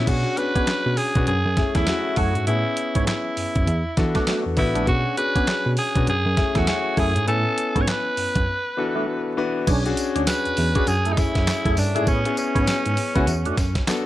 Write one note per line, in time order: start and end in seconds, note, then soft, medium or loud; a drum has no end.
0.07 0.23 B2 medium
0.07 0.32 C#4 medium
0.07 0.32 D4 medium
0.07 0.32 F#4 medium
0.07 0.40 F#4 loud
0.07 0.33 G#4 medium
0.07 kick loud
0.07 closed hi-hat medium
0.07 crash medium
0.37 0.45 B3 soft
0.37 0.96 C#4 medium
0.37 0.96 D4 medium
0.37 0.96 F#4 medium
0.37 0.99 B4 loud
0.37 0.96 B4 medium
0.37 closed hi-hat medium
0.55 0.65 B3 medium
0.55 0.66 C#4 medium
0.55 0.67 D4 medium
0.55 0.67 G#4 medium
0.55 kick medium
0.55 closed hi-hat medium
0.67 snare loud
0.67 clap medium
0.67 closed hi-hat medium
0.86 0.96 B2 loud
0.97 1.27 G#4 loud
0.97 open hi-hat medium
1.15 1.25 B2 medium
1.15 1.27 C#4 medium
1.15 1.27 D4 medium
1.15 1.28 F#4 medium
1.15 1.28 B4 medium
1.15 kick medium
1.15 closed hi-hat medium
1.27 1.43 F#2 loud
1.27 1.77 G#4 loud
1.27 closed hi-hat medium
1.46 1.56 F#2 medium
1.57 1.82 A3 medium
1.57 1.82 C#4 medium
1.57 1.82 E4 medium
1.57 1.82 G#4 medium
1.57 kick medium
1.57 snare medium
1.57 closed hi-hat medium
1.75 1.85 E2 medium
1.75 1.87 A3 medium
1.75 2.19 E4 loud
1.75 1.87 E4 medium
1.75 1.87 G#4 medium
1.75 kick medium
1.75 snare medium
1.75 closed hi-hat medium
1.87 2.37 A3 medium
1.87 2.37 C#4 medium
1.87 2.37 E4 medium
1.87 2.37 F#4 medium
1.87 snare loud
1.87 clap medium
1.87 closed hi-hat medium
2.16 2.33 F#2 medium
2.16 2.34 A3 medium
2.16 2.34 E4 medium
2.16 2.47 F#4 medium
2.16 2.35 G#4 medium
2.16 kick medium
2.16 open hi-hat medium
2.35 2.45 G#2 medium
2.35 closed hi-hat medium
2.47 2.62 A2 loud
2.47 3.41 B3 medium
2.47 3.41 C#4 medium
2.47 3.03 E4 loud
2.47 3.41 E4 medium
2.47 3.41 G#4 medium
2.47 closed hi-hat medium
2.77 closed hi-hat medium
2.95 3.05 G#2 medium
2.95 3.06 B3 medium
2.95 3.07 C#4 medium
2.95 3.07 G#4 medium
2.95 kick medium
2.95 closed hi-hat medium
3.07 4.27 E4 medium
3.07 snare loud
3.07 clap medium
3.07 closed hi-hat medium
3.37 3.44 F#2 medium
3.37 open hi-hat medium
3.55 3.66 F#2 medium
3.55 kick loud
3.55 closed hi-hat medium
3.67 3.82 E2 loud
3.67 closed hi-hat medium
3.97 4.13 E3 medium
3.97 4.46 B3 medium
3.97 4.47 D4 medium
3.97 4.47 F#4 medium
3.97 4.47 A4 loud
3.97 kick medium
3.97 snare medium
3.97 closed hi-hat medium
4.15 4.26 A3 medium
4.15 4.26 D4 medium
4.15 4.26 F#4 medium
4.15 kick medium
4.15 snare medium
4.15 closed hi-hat medium
4.27 4.44 A3 medium
4.27 4.44 D4 medium
4.27 4.44 F#4 medium
4.27 snare loud
4.27 clap medium
4.27 closed hi-hat medium
4.45 4.55 E2 medium
4.57 4.73 A1 medium
4.57 4.82 B3 loud
4.57 4.82 D4 medium
4.57 4.86 E4 medium
4.57 4.82 F#4 medium
4.57 4.82 B4 loud
4.57 kick medium
4.57 open hi-hat medium
4.75 4.85 A#1 medium
4.75 4.86 A3 medium
4.75 4.86 D4 medium
4.75 4.87 F#4 medium
4.75 closed hi-hat medium
4.87 5.03 B2 loud
4.87 5.12 C#4 medium
4.87 5.12 D4 medium
4.87 5.16 F#4 loud
4.87 5.12 F#4 medium
4.87 5.13 G#4 medium
4.87 kick loud
4.87 closed hi-hat medium
5.17 5.24 B3 soft
5.17 5.76 C#4 medium
5.17 5.76 D4 medium
5.17 5.76 F#4 medium
5.17 5.76 G#4 medium
5.17 5.73 B4 loud
5.17 closed hi-hat medium
5.35 5.46 B3 medium
5.35 5.46 C#4 medium
5.35 5.47 D4 medium
5.35 5.47 G#4 medium
5.35 kick medium
5.35 closed hi-hat medium
5.47 snare loud
5.47 clap medium
5.47 closed hi-hat medium
5.66 5.76 B2 medium
5.77 6.06 G#4 loud
5.77 open hi-hat medium
5.95 6.06 B2 medium
5.95 6.07 C#4 medium
5.95 6.08 D4 medium
5.95 6.08 F#4 medium
5.95 6.08 B4 medium
5.95 kick loud
5.95 closed hi-hat medium
6.07 6.23 F#2 medium
6.07 6.59 G#4 loud
6.07 closed hi-hat medium
6.26 6.35 F#2 loud
6.37 6.62 A3 medium
6.37 6.62 C#4 medium
6.37 6.62 E4 medium
6.37 6.62 G#4 medium
6.37 kick medium
6.37 snare medium
6.37 closed hi-hat medium
6.55 6.65 E2 medium
6.55 6.66 A3 medium
6.55 6.67 E4 medium
6.55 7.00 F#4 medium
6.55 6.67 G#4 medium
6.55 kick medium
6.55 snare medium
6.55 closed hi-hat medium
6.67 7.16 A3 medium
6.67 7.17 C#4 medium
6.67 7.17 E4 medium
6.67 7.17 G#4 medium
6.67 snare loud
6.67 clap medium
6.67 closed hi-hat medium
6.97 7.13 F#2 loud
6.97 7.14 A3 medium
6.97 7.14 E4 medium
6.97 7.14 G#4 medium
6.97 7.28 G#4 loud
6.97 kick medium
6.97 open hi-hat medium
7.16 7.26 G#2 medium
7.16 closed hi-hat medium
7.27 7.43 A2 loud
7.27 8.20 B3 medium
7.27 8.21 C#4 medium
7.27 8.21 E4 medium
7.27 7.83 A4 loud
7.27 8.21 G#5 medium
7.27 closed hi-hat medium
7.58 closed hi-hat medium
7.75 7.86 G#2 medium
7.75 7.86 B3 medium
7.75 7.87 C#4 medium
7.75 7.87 G#4 medium
7.75 kick medium
7.75 closed hi-hat medium
7.81 7.89 C#5 medium
7.87 9.38 B4 loud
7.87 snare loud
7.87 clap medium
7.87 closed hi-hat medium
8.17 8.25 F#2 medium
8.17 open hi-hat medium
8.35 8.46 F#2 medium
8.35 kick loud
8.35 closed hi-hat medium
8.77 9.26 E3 medium
8.77 9.27 B3 medium
8.77 9.27 D4 medium
8.77 9.27 F#4 medium
8.77 9.27 A4 loud
8.95 9.06 E3 medium
8.95 9.07 A3 medium
8.95 9.07 D4 medium
8.95 9.07 F#4 medium
9.37 9.62 E3 loud
9.37 9.62 B3 loud
9.37 9.62 D4 loud
9.37 9.62 F#4 loud
9.37 9.62 B4 loud
9.67 9.93 B1 loud
9.67 9.84 C#4 medium
9.67 9.84 D4 medium
9.67 9.84 G#4 loud
9.67 kick loud
9.67 closed hi-hat medium
9.67 crash loud
9.67 tambourine medium
9.85 10.53 C#4 loud
9.85 10.53 D4 medium
9.85 10.53 F#4 medium
9.85 10.53 G#4 loud
9.85 closed hi-hat medium
9.97 closed hi-hat medium
9.97 tambourine medium
10.15 10.26 D2 medium
10.15 10.26 C#4 medium
10.15 10.27 D4 medium
10.15 10.27 G#4 medium
10.15 closed hi-hat medium
10.27 10.90 B4 loud
10.27 snare loud
10.27 clap medium
10.27 closed hi-hat medium
10.27 tambourine medium
10.45 10.51 E2 soft
10.45 closed hi-hat medium
10.57 10.73 E2 loud
10.57 open hi-hat medium
10.75 10.87 C#4 medium
10.75 10.86 C#4 medium
10.75 10.87 D4 medium
10.75 10.87 F#4 medium
10.75 10.87 G#4 medium
10.75 10.88 G#4 medium
10.75 kick loud
10.75 closed hi-hat medium
10.87 11.13 F#2 loud
10.87 11.14 G#4 loud
10.87 closed hi-hat medium
10.87 tambourine medium
11.05 11.17 A3 medium
11.05 11.17 E4 medium
11.05 11.17 G#4 medium
11.05 closed hi-hat medium
11.12 11.20 D#4 medium
11.17 11.75 A3 medium
11.17 11.76 C#4 medium
11.17 11.76 E4 medium
11.17 11.80 E4 loud
11.17 11.76 G#4 medium
11.17 kick medium
11.17 snare medium
11.17 closed hi-hat medium
11.17 tambourine medium
11.35 11.45 F#2 medium
11.35 kick medium
11.35 snare medium
11.35 closed hi-hat medium
11.47 snare loud
11.47 clap medium
11.47 closed hi-hat medium
11.47 tambourine medium
11.65 11.75 F#2 medium
11.65 11.77 A3 medium
11.65 11.77 E4 medium
11.65 11.77 G#4 medium
11.65 kick medium
11.65 closed hi-hat medium
11.77 11.93 G2 loud
11.77 12.10 D4 medium
11.77 open hi-hat medium
11.77 tambourine medium
11.95 12.07 A3 medium
11.95 12.06 A3 medium
11.95 12.07 C#4 medium
11.95 12.06 E4 medium
11.95 12.07 E4 medium
11.95 12.06 G#4 medium
11.95 12.08 G#4 loud
11.95 closed hi-hat medium
12.07 12.23 A2 medium
12.07 12.24 B3 medium
12.07 12.24 C#4 medium
12.07 12.38 C#4 loud
12.07 12.24 G#4 loud
12.07 kick loud
12.07 closed hi-hat medium
12.07 tambourine medium
12.25 12.93 B3 medium
12.25 12.93 C#4 medium
12.25 12.93 E4 medium
12.25 12.93 G#4 medium
12.25 closed hi-hat medium
12.37 13.54 C#4 medium
12.37 closed hi-hat medium
12.37 tambourine medium
12.55 12.66 G#2 medium
12.55 12.66 B3 medium
12.55 12.66 C#4 medium
12.55 12.67 G#4 medium
12.55 kick medium
12.55 closed hi-hat medium
12.67 snare loud
12.67 clap loud
12.67 closed hi-hat medium
12.67 tambourine medium
12.86 12.96 G#2 medium
12.86 closed hi-hat medium
12.97 open hi-hat medium
13.15 13.26 C#2 medium
13.15 13.26 B3 medium
13.15 13.27 B3 loud
13.15 13.26 C#4 medium
13.15 13.27 C#4 loud
13.15 13.28 E4 loud
13.15 13.28 F#4 loud
13.15 13.27 G#4 medium
13.15 kick loud
13.15 closed hi-hat medium
13.27 13.43 E2 loud
13.27 closed hi-hat medium
13.27 tambourine medium
13.45 13.51 F#2 medium
13.45 13.56 A3 medium
13.45 13.57 D4 medium
13.45 13.57 F#4 medium
13.45 closed hi-hat medium
13.57 13.73 F#2 medium
13.57 kick medium
13.57 snare medium
13.57 closed hi-hat medium
13.57 tambourine medium
13.75 kick medium
13.75 snare medium
13.75 closed hi-hat medium
13.87 14.06 B3 medium
13.87 14.06 D4 medium
13.87 14.06 F#4 medium
13.87 14.06 A4 loud
13.87 snare loud
13.87 clap loud
13.87 closed hi-hat medium
13.87 tambourine medium